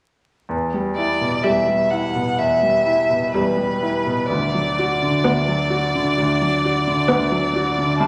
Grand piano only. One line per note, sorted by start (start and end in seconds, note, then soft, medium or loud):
0.49 1.43 E2 soft
0.74 1.11 G3 soft
0.98 1.35 E4 soft
1.21 1.59 B2 soft
1.44 2.37 E2 soft
1.68 2.06 G3 soft
1.92 2.30 E4 soft
2.15 2.54 B2 soft
2.39 3.32 E2 soft
2.63 3.01 G3 soft
2.86 3.24 E4 soft
3.09 3.47 B2 soft
3.34 4.26 E2 soft
3.57 3.95 G3 soft
3.82 4.20 E4 soft
4.06 4.30 B2 soft
4.30 5.23 D2 soft
4.54 4.92 F#3 soft
4.79 5.16 F#4 soft
5.02 5.39 D3 soft
5.24 6.16 D2 soft
5.48 5.85 F#3 soft
5.70 6.08 F#4 soft
5.95 6.32 D3 soft
6.18 7.10 D2 soft
6.41 6.78 F#3 soft
6.65 7.01 F#4 soft
6.87 7.23 D3 soft
7.11 7.98 D2 soft
7.31 7.68 F#3 soft
7.56 7.91 F#4 soft
7.78 8.00 D3 soft
8.00 8.07 C2 soft